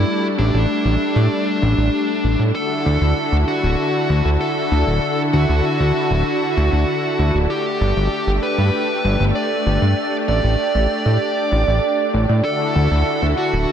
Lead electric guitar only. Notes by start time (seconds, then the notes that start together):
Already playing: E4
0.38 D4
2.55 A4
3.48 F#4
4.41 A4
5.33 F#4
7.50 G4
8.43 B4
9.35 D5
10.28 D5
12.44 A4
13.37 F#4